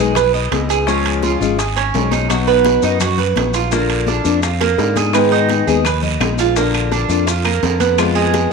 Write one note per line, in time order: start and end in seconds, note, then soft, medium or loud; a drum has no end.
0.00 0.48 B1 medium
0.00 0.14 G#3 medium
0.00 0.15 B3 medium
0.00 0.15 D#4 medium
0.00 0.15 G#4 medium
0.00 0.16 G#4 medium
0.15 0.34 B4 medium
0.15 muted steel-string acoustic guitar stroke medium
0.15 high bongo medium
0.15 high conga soft
0.15 low conga medium
0.15 high timbale medium
0.15 long guiro medium
0.15 maracas medium
0.34 0.69 D#5 medium
0.34 high bongo soft
0.34 high conga soft
0.34 maracas soft
0.51 1.35 C#2 medium
0.51 0.86 G#3 soft
0.51 0.86 B3 soft
0.51 0.87 D#4 soft
0.51 0.87 G#4 soft
0.51 high bongo soft
0.51 low bongo medium
0.51 high conga medium
0.51 high timbale medium
0.51 low timbale medium
0.51 short guiro medium
0.51 maracas soft
0.69 0.87 G#4 medium
0.69 high bongo soft
0.69 high conga soft
0.69 high timbale medium
0.69 short guiro medium
0.69 maracas medium
0.87 1.40 C#3 medium
0.87 1.40 F3 medium
0.87 1.40 G#3 medium
0.87 1.40 C#4 medium
0.87 1.22 C#4 medium
0.87 1.39 F4 medium
0.87 high bongo medium
0.87 high conga soft
0.87 long guiro medium
0.87 maracas medium
1.05 high conga soft
1.05 high timbale loud
1.05 maracas soft
1.23 1.58 F4 medium
1.23 high bongo medium
1.23 high conga medium
1.23 low timbale medium
1.23 short guiro medium
1.23 maracas soft
1.40 1.90 G#1 medium
1.40 1.58 F3 medium
1.40 1.58 G#3 medium
1.40 1.58 C#4 medium
1.40 1.58 F4 medium
1.40 high bongo soft
1.40 high conga soft
1.40 short guiro medium
1.40 maracas medium
1.58 1.76 G#4 medium
1.58 muted steel-string acoustic guitar stroke medium
1.58 high bongo medium
1.58 high conga soft
1.58 high timbale medium
1.58 long guiro medium
1.58 maracas medium
1.76 2.11 C#4 medium
1.76 high bongo soft
1.76 high conga soft
1.76 high timbale loud
1.76 maracas soft
1.94 2.77 B1 medium
1.94 2.29 F3 soft
1.94 2.29 G#3 medium
1.94 2.30 C#4 soft
1.94 2.30 F4 medium
1.94 high bongo soft
1.94 low bongo medium
1.94 high conga soft
1.94 low timbale medium
1.94 short guiro medium
1.94 maracas soft
2.11 2.29 D#4 medium
2.11 high bongo soft
2.11 high conga medium
2.11 high timbale medium
2.11 short guiro medium
2.11 maracas medium
2.29 2.82 B2 medium
2.29 2.82 F#3 medium
2.29 2.82 B3 medium
2.29 2.82 D#4 medium
2.29 2.47 F#4 medium
2.29 2.81 F#4 medium
2.29 high bongo medium
2.29 high timbale medium
2.29 long guiro medium
2.29 maracas medium
2.47 2.82 B3 medium
2.47 high conga soft
2.47 maracas soft
2.65 high bongo medium
2.65 high conga medium
2.65 high timbale medium
2.65 low timbale medium
2.65 short guiro medium
2.65 maracas soft
2.82 3.33 F#2 medium
2.82 2.99 F#3 medium
2.82 2.99 B3 medium
2.82 3.00 D#4 medium
2.82 2.99 F#4 medium
2.82 high bongo soft
2.82 short guiro medium
2.82 maracas medium
3.00 3.18 F#4 medium
3.00 muted steel-string acoustic guitar stroke medium
3.00 high bongo medium
3.00 high conga soft
3.00 low conga medium
3.00 high timbale medium
3.00 long guiro medium
3.00 maracas loud
3.18 3.53 B4 medium
3.18 high bongo soft
3.18 high conga soft
3.18 low conga medium
3.18 maracas soft
3.36 4.19 A#1 medium
3.36 3.71 F#3 soft
3.36 3.71 B3 soft
3.36 3.71 D#4 soft
3.36 3.72 F#4 medium
3.36 high bongo soft
3.36 low bongo medium
3.36 high conga medium
3.36 high timbale loud
3.36 low timbale medium
3.36 short guiro medium
3.36 maracas soft
3.54 3.71 F4 medium
3.54 high bongo soft
3.54 high timbale medium
3.54 short guiro medium
3.54 maracas medium
3.71 4.24 D3 medium
3.71 4.06 A#3 medium
3.71 4.25 A#3 medium
3.71 4.24 D4 medium
3.71 4.23 F4 medium
3.71 high bongo medium
3.71 high conga soft
3.71 long guiro medium
3.71 maracas medium
3.89 high conga soft
3.89 high timbale medium
3.89 maracas soft
4.07 4.42 D4 medium
4.07 high bongo medium
4.07 high conga medium
4.07 low timbale medium
4.07 short guiro medium
4.07 maracas soft
4.24 4.75 F2 medium
4.24 4.41 A#3 medium
4.24 4.42 D4 medium
4.24 4.42 F4 medium
4.24 high bongo soft
4.24 high conga soft
4.24 short guiro medium
4.24 maracas medium
4.42 4.60 F4 medium
4.42 muted steel-string acoustic guitar stroke medium
4.42 high bongo medium
4.42 high conga soft
4.42 high timbale medium
4.42 long guiro medium
4.42 maracas medium
4.60 4.95 A#3 medium
4.60 high bongo medium
4.60 high conga soft
4.60 high timbale medium
4.60 maracas soft
4.78 5.61 G#2 medium
4.78 5.13 D3 soft
4.78 5.14 A#3 soft
4.78 5.14 D4 medium
4.78 5.14 F4 medium
4.78 high bongo loud
4.78 high conga soft
4.78 low timbale medium
4.78 short guiro medium
4.78 maracas soft
4.96 5.14 G#4 medium
4.96 low bongo medium
4.96 high conga medium
4.96 high timbale medium
4.96 short guiro medium
4.96 maracas medium
5.13 5.67 D#3 medium
5.13 5.67 G#3 medium
5.13 5.67 B3 medium
5.13 5.67 D#4 medium
5.13 5.66 G#4 medium
5.13 5.31 B4 medium
5.13 high bongo medium
5.13 high conga soft
5.13 high timbale medium
5.13 long guiro medium
5.13 claves medium
5.13 maracas medium
5.32 5.66 D#4 medium
5.32 maracas soft
5.49 high bongo medium
5.49 high conga medium
5.49 high timbale medium
5.49 low timbale medium
5.49 short guiro medium
5.49 maracas soft
5.67 6.17 D#2 medium
5.67 5.85 G#3 medium
5.67 5.85 B3 medium
5.67 5.85 D#4 medium
5.67 5.84 G#4 medium
5.67 5.85 G#4 medium
5.67 high bongo soft
5.67 short guiro medium
5.67 maracas medium
5.85 6.02 B4 medium
5.85 muted steel-string acoustic guitar stroke medium
5.85 high bongo medium
5.85 high conga soft
5.85 low conga medium
5.85 high timbale medium
5.85 long guiro medium
5.85 claves medium
5.85 maracas medium
6.02 6.37 D#5 medium
6.02 high bongo soft
6.02 high conga soft
6.02 low conga medium
6.02 maracas soft
6.20 7.04 A#1 medium
6.20 6.56 G#3 soft
6.20 6.56 B3 soft
6.20 6.56 D#4 soft
6.20 6.57 G#4 medium
6.20 high bongo soft
6.20 low bongo medium
6.20 high conga medium
6.20 high timbale loud
6.20 low timbale medium
6.20 short guiro medium
6.20 claves medium
6.20 maracas soft
6.38 6.56 F4 medium
6.38 high bongo soft
6.38 high conga soft
6.38 high timbale medium
6.38 short guiro medium
6.38 maracas medium
6.56 7.09 D3 medium
6.56 6.91 A#3 medium
6.56 7.09 A#3 medium
6.56 7.09 D4 medium
6.56 7.09 F4 medium
6.56 high bongo medium
6.56 high conga soft
6.56 long guiro medium
6.56 maracas medium
6.74 high conga soft
6.74 high timbale medium
6.74 claves medium
6.74 maracas soft
6.92 7.26 D4 medium
6.92 high bongo medium
6.92 high conga medium
6.92 low timbale medium
6.92 short guiro medium
6.92 maracas soft
7.08 7.59 F2 medium
7.08 7.27 A#3 soft
7.08 7.27 D4 medium
7.08 7.27 F4 medium
7.08 high bongo soft
7.08 high conga soft
7.08 short guiro medium
7.08 maracas medium
7.27 7.44 F4 medium
7.27 muted steel-string acoustic guitar stroke medium
7.27 high bongo medium
7.27 high conga soft
7.27 high timbale medium
7.27 long guiro medium
7.27 maracas loud
7.45 7.79 A#3 medium
7.45 high bongo soft
7.45 high conga soft
7.45 high timbale medium
7.45 claves medium
7.45 maracas soft
7.63 8.46 F2 loud
7.63 7.98 D3 soft
7.63 7.98 A#3 medium
7.63 7.99 D4 soft
7.63 7.99 F4 medium
7.63 high bongo soft
7.63 low bongo medium
7.63 high conga soft
7.63 low timbale medium
7.63 short guiro medium
7.63 maracas soft
7.80 7.98 B3 medium
7.80 high bongo soft
7.80 high conga medium
7.80 high timbale medium
7.80 short guiro medium
7.80 maracas medium
7.98 8.53 F3 medium
7.98 8.51 G#3 medium
7.98 8.52 B3 medium
7.98 8.16 F4 medium
7.98 8.51 F4 medium
7.98 high bongo medium
7.98 high conga soft
7.98 high timbale medium
7.98 long guiro medium
7.98 claves medium
7.98 maracas medium
8.15 8.50 G#3 loud
8.15 high conga soft
8.15 maracas soft
8.34 high bongo medium
8.34 high conga medium
8.34 high timbale medium
8.34 low timbale medium
8.34 short guiro medium
8.34 maracas soft